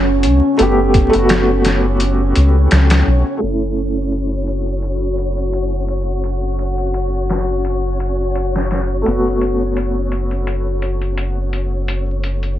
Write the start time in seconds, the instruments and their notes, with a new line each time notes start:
Already playing: sub bass F#1, felt piano A3 B3 F#4, synth texture C#4 C#5, ambient pad C#4
0.23 sub bass C#2, closed hi-hat
0.58 sub bass F#1, felt piano A3 B3, closed hi-hat
0.62 felt piano G4
0.94 kick, closed hi-hat
1.10 felt piano A3, closed hi-hat
1.14 sub bass F#1, felt piano B3
1.18 felt piano F#4
1.29 snare, closed hi-hat
1.65 snare, closed hi-hat
2.00 closed hi-hat
2.36 sub bass C#2, closed hi-hat
2.71 sub bass C#2, snare, closed hi-hat
2.90 snare, closed hi-hat
3.06 sub bass B1
3.37 felt piano A3, synth texture C#4
3.41 sub bass F#1, felt piano C#4, ambient pad F#4, synth texture C#5, closed hi-hat
3.46 felt piano E4
3.77 closed hi-hat
4.12 closed hi-hat
4.47 closed hi-hat
4.66 closed hi-hat
4.82 closed hi-hat
5.18 closed hi-hat
5.37 closed hi-hat
5.53 closed hi-hat
5.88 closed hi-hat
6.24 closed hi-hat
6.59 closed hi-hat
6.78 closed hi-hat
6.94 closed hi-hat
7.29 snare, closed hi-hat
7.65 closed hi-hat
8.00 closed hi-hat
8.35 closed hi-hat
8.56 snare
8.71 snare, closed hi-hat
9.02 felt piano A3
9.06 sub bass F#1, felt piano B3, closed hi-hat
9.11 felt piano F#4
9.41 closed hi-hat
9.77 closed hi-hat
10.12 closed hi-hat
10.31 closed hi-hat
10.47 closed hi-hat
10.82 closed hi-hat
11.02 closed hi-hat
11.18 closed hi-hat
11.53 closed hi-hat
11.88 closed hi-hat
12.23 closed hi-hat
12.43 closed hi-hat